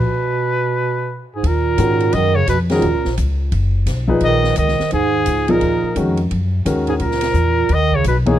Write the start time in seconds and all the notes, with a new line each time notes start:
Already playing: B2 B4
1.35 G#2 G#4
1.43 D#2 A#4, ride
1.48 A#2
1.78 G#2 D#3 G#3 C#4 F#4 A#4, hi-hat pedal, ride
2.00 ride
2.13 F#2 D#3 D#5, ride
2.35 C#3 C#5
2.47 F2 B2 B4, hi-hat pedal, ride
2.69 A#2 D#3 G#3 C#4 F#4 G#4 A#4, snare, ride
2.82 D#2, ride
2.94 C#2
3.05 A#1, snare
3.17 C#2, hi-hat pedal, ride
3.52 F#1, ride
3.86 B1, snare, hi-hat pedal, ride
4.08 A#2 F3 D#4 G#4 B4, kick
4.20 A#1 D#3 D#5, ride
4.44 snare
4.56 C#2 D#3 D#5, hi-hat pedal, ride
4.68 snare
4.80 muted upright bass stroke, snare
4.91 D#2 G#2 G#4, ride
5.26 C#2, hi-hat pedal, ride
5.48 A#2 F3 D#4 G#4 A#4, ride
5.61 D#2, ride
5.83 muted upright bass stroke
5.96 F2 D#3 G#3 C#4 F#4 A#4, hi-hat pedal, ride
6.17 ride
6.31 F#2, ride
6.65 D#2 D#3 G#3 C#4 F#4 A#4, hi-hat pedal, ride
6.87 G#2 G#4, ride
6.99 C#2 A#2 A#4, ride
7.11 snare
7.21 snare, ride
7.34 E2, hi-hat pedal
7.69 D#2 D#3, ride
7.74 D#5
7.92 C#3 C#5, kick
8.04 B1 B2 B4, hi-hat pedal, ride
8.26 G#2 E3 A#3 D#4 G#4 C#5, kick, ride
8.30 G#4